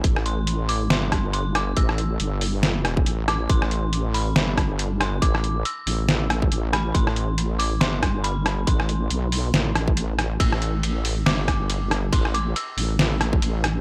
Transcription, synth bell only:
X:1
M:4/4
L:1/8
Q:"Swing 16ths" 1/4=139
K:Am
V:1 name="Synth bell"
z c'2 d' c'2 c' d' | e'3 z4 d' | c'3 b3 z c' | d'2 e'4 z b |
c'3 d' c'2 b2 | c'6 z2 | e'4 d'3 z | c' d' e'4 z2 |]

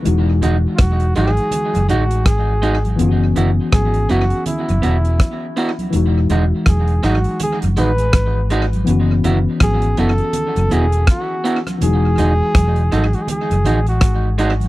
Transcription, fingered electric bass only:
X:1
M:4/4
L:1/16
Q:"Swing 16ths" 1/4=82
K:E
V:1 name="Fingered electric bass" clef=bass
E,,,2 E,,, z E,,,2 G,,, z2 F,,, A,,,2 G,,,4 | F,,,2 F,,, z G,,,2 F,,, z2 F,,, E,,,2 z4 | E,,,2 E,,, z E,,,2 G,,, z2 F,,, A,,,2 G,,,4 | F,,,2 F,,, z G,,,2 F,,, z2 F,,, E,,,2 z4 |
E,,,2 E,,, z E,,,2 G,,, z2 F,,, A,,,2 G,,,4 |]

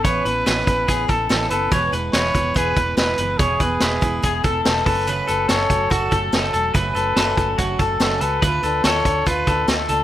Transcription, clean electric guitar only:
X:1
M:4/4
L:1/8
Q:1/4=143
K:F#m
V:1 name="Clean electric guitar"
c B B2 G A2 A | c B B2 G B2 B | c B B2 G A2 A | B A A2 F A2 A |
B A A2 F A2 A | B A A2 =F A2 A |]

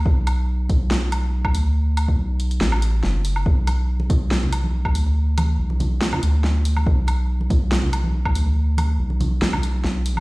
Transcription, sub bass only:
X:1
M:4/4
L:1/8
Q:1/4=141
K:Bm
V:1 name="Sub bass" clef=bass
B,,,4 B,,,3 D,,- | D,,2 B,,,2 A,,,2 F,,,2 | B,,,4 B,,,3 D,,- | D,,2 B,,,2 z D,,3 |
B,,,4 B,,,3 D,,- | D,,2 B,,,2 B,,,2 B,,,2 |]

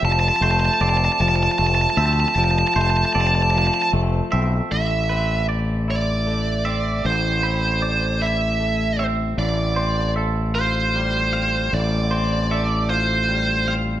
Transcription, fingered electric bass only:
X:1
M:6/8
L:1/8
Q:3/8=51
K:Am
V:1 name="Fingered electric bass" clef=bass
F,,, F,,, F,,, F,,, F,,, D,, | F,,, F,,, F,,,2 F,,, B,,, | A,,,6 | A,,,6 |
A,,,6 | A,,,6 |]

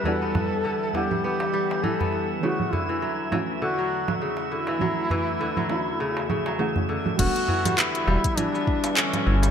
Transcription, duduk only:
X:1
M:4/4
L:1/16
Q:"Swing 16ths" 1/4=101
K:Edor
V:1 name="Duduk"
A6 G2 G4 A3 z | F2 E4 z2 F4 z2 E2- | E12 z4 | F4 E4 D4 C4 |]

